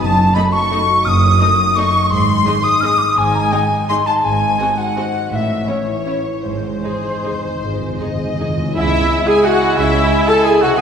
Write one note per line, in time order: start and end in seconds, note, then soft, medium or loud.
0.00 0.29 F#1 medium
0.00 1.05 F#2 medium
0.00 0.29 F#2 medium
0.00 2.12 F#3 medium
0.00 0.34 D#4 medium
0.00 0.52 F#4 medium
0.00 0.35 A5 medium
0.05 0.35 A5 medium
0.18 1.21 A3 medium
0.34 0.44 A3 medium
0.34 1.40 D#4 medium
0.34 0.43 D#4 medium
0.34 0.43 D#5 medium
0.34 0.54 B5 loud
0.34 0.42 B5 medium
0.52 0.88 F#4 medium
0.52 1.06 C#6 loud
0.52 1.04 C#6 medium
0.71 0.80 A3 medium
0.71 0.80 D#4 medium
0.71 1.75 A4 medium
0.71 0.79 D#5 medium
0.89 1.57 F#4 medium
1.05 1.34 F#1 medium
1.05 2.12 F#2 medium
1.05 1.35 F#2 medium
1.05 1.77 D#6 medium
1.05 1.77 D#6 loud
1.05 1.09 F6 medium
1.23 2.12 A3 medium
1.40 1.49 A3 medium
1.40 2.45 D#4 medium
1.40 1.49 D#4 medium
1.40 1.48 D#5 medium
1.58 1.93 F#4 medium
1.75 1.85 A3 medium
1.75 1.85 D#4 medium
1.75 2.12 A4 medium
1.75 1.85 D#5 medium
1.75 2.11 C#6 medium
1.94 2.12 F#4 medium
2.10 2.39 G#1 medium
2.10 2.40 G#2 medium
2.10 3.17 G#2 medium
2.10 2.65 C6 loud
2.10 2.64 C6 medium
2.28 2.63 G#3 medium
2.46 2.54 G#3 medium
2.46 2.54 D#4 medium
2.46 3.00 D#4 medium
2.46 2.54 D#5 medium
2.63 3.34 G#3 medium
2.63 2.81 D#6 loud
2.63 3.17 D#6 medium
2.80 2.91 G#3 medium
2.80 2.91 D#4 medium
2.80 3.89 G#4 medium
2.80 2.90 D#5 medium
2.80 2.86 F6 medium
2.85 2.98 D#6 loud
2.97 3.52 D#4 medium
2.97 3.03 D6 medium
3.02 3.19 D#6 loud
3.16 3.46 G#1 medium
3.16 3.46 G#2 medium
3.16 4.23 G#2 medium
3.16 3.87 G#5 medium
3.16 3.36 G#5 loud
3.35 3.71 G#3 medium
3.35 3.41 A#5 loud
3.40 3.53 G#5 loud
3.51 3.61 G#3 medium
3.51 3.60 D#4 medium
3.51 4.06 D#4 medium
3.51 3.59 D#5 medium
3.51 3.58 G5 loud
3.57 3.88 G#5 loud
3.72 5.33 G#3 medium
3.88 3.98 G#3 medium
3.88 3.98 D#4 medium
3.88 5.33 G#4 medium
3.88 3.97 D#5 medium
3.88 3.96 C6 medium
3.88 4.07 C6 loud
4.06 4.58 D#4 medium
4.06 4.25 A5 medium
4.06 4.14 A5 medium
4.23 4.52 G#1 medium
4.23 4.53 G#2 medium
4.23 5.33 G#2 medium
4.23 4.76 G#5 medium
4.23 4.79 G#5 loud
4.41 5.33 C4 medium
4.59 4.68 C4 medium
4.59 5.33 D#4 medium
4.59 4.68 F#4 medium
4.59 4.67 D#5 medium
4.78 5.13 F#4 soft
4.78 5.31 F#5 medium
4.96 5.05 C4 medium
4.96 5.04 F#4 medium
4.96 5.33 C5 medium
4.96 5.04 D#5 medium
5.15 5.33 F#4 soft
5.31 5.61 A1 medium
5.31 5.61 A2 medium
5.31 6.46 A2 medium
5.31 5.67 E5 medium
5.31 5.69 E5 medium
5.31 5.36 F#5 medium
5.49 6.46 C#4 soft
5.67 6.46 E3 soft
5.67 5.76 C#4 soft
5.67 5.76 E4 soft
5.67 6.18 C#5 medium
5.67 5.76 C#5 soft
5.67 6.45 C#5 medium
5.86 6.23 E4 soft
6.06 6.15 C#4 soft
6.06 6.14 E4 soft
6.06 6.45 C#5 soft
6.06 6.15 C#5 soft
6.25 6.45 E4 soft
6.44 6.77 G#1 medium
6.44 6.50 G#2 soft
6.44 7.59 G#2 soft
6.44 6.77 G#2 medium
6.44 8.40 C5 medium
6.44 8.36 C5 medium
6.51 6.59 G#2 soft
6.63 7.78 G#3 soft
6.69 6.76 G#2 soft
6.78 6.86 G#2 soft
6.83 7.22 D#4 soft
6.83 6.92 D#4 soft
6.83 7.21 G#4 medium
6.83 6.92 G#4 soft
6.87 6.95 G#2 soft
6.96 7.04 G#2 soft
7.04 7.12 G#2 soft
7.04 7.42 G#4 soft
7.14 7.21 G#2 soft
7.22 7.30 G#2 soft
7.22 7.98 D#4 soft
7.22 7.32 D#4 soft
7.22 7.32 G#4 soft
7.22 8.00 C5 medium
7.31 7.38 G#2 soft
7.39 7.46 G#2 soft
7.43 8.18 G#4 soft
7.47 7.54 G#2 soft
7.55 7.62 G#2 soft
7.61 7.93 G#1 soft
7.61 8.77 G#2 soft
7.61 7.93 G#2 medium
7.61 7.70 G#2 medium
7.72 7.79 G#2 medium
7.80 7.87 G#2 medium
7.80 8.62 G#3 soft
7.88 7.95 G#2 medium
7.96 8.05 G#2 medium
7.96 8.38 D#4 soft
7.96 8.76 D#5 medium
8.01 8.09 D#4 soft
8.01 8.09 G#4 soft
8.06 8.14 G#2 medium
8.15 8.23 G#2 medium
8.20 8.58 G#4 soft
8.24 8.32 G#2 medium
8.33 8.40 G#2 medium
8.39 8.48 G#2 medium
8.39 8.77 D#4 soft
8.39 8.48 D#4 soft
8.39 8.48 G#4 soft
8.49 8.56 G#2 medium
8.57 8.64 G#2 medium
8.57 10.71 C#3 medium
8.57 8.71 G#4 soft
8.63 8.73 G#2 medium
8.63 10.65 G#3 soft
8.67 10.75 E4 soft
8.72 10.73 G#4 soft
8.72 9.24 E5 medium
8.76 9.04 C#2 medium
8.76 9.04 C#3 medium
8.76 10.75 G#3 medium
8.76 9.29 E4 medium
8.76 10.75 E4 medium
8.76 9.25 E4 medium
8.76 9.24 E5 medium
8.76 8.81 F#5 medium
8.76 10.75 G#5 medium
8.80 9.29 E5 medium
9.27 9.46 G#4 medium
9.27 9.45 G#4 medium
9.27 9.46 G#5 medium
9.27 9.45 G#5 medium
9.45 9.79 F#4 medium
9.45 9.77 F#4 medium
9.45 9.77 F#5 medium
9.45 9.79 F#5 medium
9.45 9.78 F#5 medium
9.76 10.05 C#2 medium
9.76 10.05 C#3 medium
9.76 10.29 E4 medium
9.76 10.27 E5 medium
9.76 10.30 E5 medium
10.27 10.45 A4 medium
10.27 10.46 A4 loud
10.27 10.34 A5 medium
10.27 10.46 A5 medium
10.27 10.48 A5 medium
10.44 10.63 G#4 medium
10.44 10.62 G#5 medium
10.44 10.52 G#5 medium
10.44 10.64 G#5 medium
10.61 10.81 C3 medium
10.61 10.77 F#4 medium
10.61 10.70 F#4 medium
10.61 10.78 F#5 medium
10.61 10.69 F#5 medium
10.61 10.79 F#5 medium
10.66 10.81 G#3 medium
10.70 10.81 F#4 medium
10.75 10.81 C2 medium
10.75 10.81 G#4 medium
10.75 10.81 G#5 loud